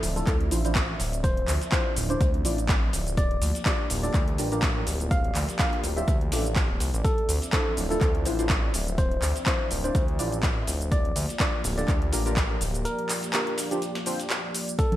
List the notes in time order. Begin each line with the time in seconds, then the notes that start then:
Already playing: F3 C4 D4 E4 F4 C5 D5 E5
0.03 D1, open hi-hat, cabasa
0.16 D4 E4 F4 A4, closed hi-hat, cabasa
0.27 D2, kick, clap, closed hi-hat, cabasa
0.41 closed hi-hat
0.51 A1 D4 E4 F4 C5, closed hi-hat, open hi-hat, cabasa
0.65 D4 E4 F4 C5, closed hi-hat, cabasa
0.75 kick, snare, clap, closed hi-hat, cabasa
1.00 D1, snare, closed hi-hat, open hi-hat, cabasa
1.13 closed hi-hat, cabasa
1.24 C5, kick, closed hi-hat, cabasa
1.37 closed hi-hat
1.48 D2, clap, closed hi-hat, open hi-hat, cabasa
1.61 snare, closed hi-hat, cabasa
1.72 D4 E4 F4 C5, kick, snare, clap, closed hi-hat, cabasa
1.96 D1, closed hi-hat, open hi-hat, cabasa
2.10 D4 E4 F4 C5 D5, closed hi-hat, cabasa
2.21 D2, kick, closed hi-hat, cabasa
2.34 closed hi-hat
2.45 A1 D4 E4 F4 D5, closed hi-hat, open hi-hat, cabasa
2.58 closed hi-hat, cabasa
2.69 kick, snare, clap, closed hi-hat, cabasa
2.93 D1, snare, closed hi-hat, open hi-hat, cabasa
3.07 closed hi-hat, cabasa
3.17 A#3 G4 D5, kick, closed hi-hat, cabasa
3.31 closed hi-hat
3.42 D2, closed hi-hat, open hi-hat, cabasa
3.55 snare, closed hi-hat, cabasa
3.66 D4 F4 G4 A#4 D5, kick, snare, clap, closed hi-hat, cabasa
3.90 D1, open hi-hat, cabasa
4.03 D4 F4 G4 A4 D5, closed hi-hat, cabasa
4.14 D2, kick, clap, closed hi-hat, cabasa
4.28 closed hi-hat
4.38 A1 D4 F4 G4 A#4, closed hi-hat, open hi-hat, cabasa
4.52 D4 F4 G4 A#4, closed hi-hat, cabasa
4.62 kick, snare, clap, closed hi-hat, cabasa
4.87 D1, snare, closed hi-hat, open hi-hat, cabasa
5.00 closed hi-hat, cabasa
5.11 F5, kick, closed hi-hat, cabasa
5.24 closed hi-hat
5.35 D2, clap, closed hi-hat, open hi-hat, cabasa
5.49 snare, closed hi-hat, cabasa
5.59 D4 F4 G4 A#4 F5, kick, snare, clap, closed hi-hat, cabasa
5.73 closed hi-hat
5.84 D1, closed hi-hat, open hi-hat, cabasa
5.97 D4 F4 G4 C5 E5, closed hi-hat, cabasa
6.08 D2, kick, closed hi-hat, cabasa
6.21 closed hi-hat
6.32 A1 D4 F4 G4 A4, snare, closed hi-hat, open hi-hat, cabasa
6.45 closed hi-hat, cabasa
6.56 kick, snare, clap, closed hi-hat, cabasa
6.70 D1
6.80 C2, snare, closed hi-hat, open hi-hat, cabasa
6.94 A1, closed hi-hat, cabasa
7.04 F3 C4 A4 E5, kick, closed hi-hat, cabasa
7.18 closed hi-hat
7.29 D2, closed hi-hat, open hi-hat, cabasa
7.42 snare, closed hi-hat, cabasa
7.53 D4 E4 F4 A4 C5, kick, snare, clap, closed hi-hat, cabasa
7.77 D1, open hi-hat, cabasa
7.90 D4 E4 F4 A4, closed hi-hat, cabasa
8.01 D2, kick, clap, closed hi-hat, cabasa
8.15 closed hi-hat
8.25 A1 D4 E4 F4 C5, closed hi-hat, open hi-hat, cabasa
8.39 D4 E4 F4 C5, closed hi-hat, cabasa
8.49 kick, snare, clap, closed hi-hat, cabasa
8.74 D1, snare, closed hi-hat, open hi-hat, cabasa
8.87 closed hi-hat, cabasa
8.98 C5, kick, closed hi-hat, cabasa
9.11 closed hi-hat
9.22 D2, clap, closed hi-hat, open hi-hat, cabasa
9.36 snare, closed hi-hat, cabasa
9.46 D4 E4 F4 C5, kick, snare, clap, closed hi-hat, cabasa
9.71 D1, closed hi-hat, open hi-hat, cabasa
9.84 D4 E4 F4 C5 D5, closed hi-hat, cabasa
9.95 D2, kick, closed hi-hat, cabasa
10.08 closed hi-hat
10.19 A1 D4 E4 F4 D5, closed hi-hat, open hi-hat, cabasa
10.32 closed hi-hat, cabasa
10.43 kick, snare, clap, closed hi-hat, cabasa
10.67 D1, snare, closed hi-hat, open hi-hat, cabasa
10.81 closed hi-hat, cabasa
10.92 A#3 G4 D5, kick, closed hi-hat, cabasa
11.05 closed hi-hat
11.16 D2, closed hi-hat, open hi-hat, cabasa
11.29 snare, closed hi-hat, cabasa
11.40 D4 F4 G4 A#4 D5, kick, snare, clap, closed hi-hat, cabasa
11.64 D1, open hi-hat, cabasa
11.78 D4 F4 G4 A4 D5, closed hi-hat, cabasa
11.88 D2, kick, clap, closed hi-hat, cabasa
12.02 closed hi-hat
12.13 A1 D4 F4 G4 A#4, closed hi-hat, open hi-hat, cabasa
12.26 D4 F4 G4 A#4, closed hi-hat, cabasa
12.36 kick, snare, clap, closed hi-hat, cabasa
12.61 D1, snare, closed hi-hat, open hi-hat, cabasa
12.74 closed hi-hat, cabasa
12.85 A#4, closed hi-hat, cabasa
12.99 closed hi-hat
13.09 clap, closed hi-hat, open hi-hat, cabasa
13.23 snare, closed hi-hat, cabasa
13.33 D4 F4 G4 A#4, snare, clap, closed hi-hat, cabasa
13.47 closed hi-hat
13.58 snare, closed hi-hat, open hi-hat, cabasa
13.71 D4 F4 G4 C5, closed hi-hat, cabasa
13.82 snare, closed hi-hat, cabasa
13.95 snare, closed hi-hat
14.06 D4 F4 G4 C5, open hi-hat, cabasa
14.20 snare, closed hi-hat, cabasa
14.30 snare, clap, closed hi-hat, cabasa
14.54 closed hi-hat, open hi-hat, cabasa
14.68 closed hi-hat, cabasa
14.79 C4 A4 E5, kick, closed hi-hat, cabasa
14.92 closed hi-hat, low conga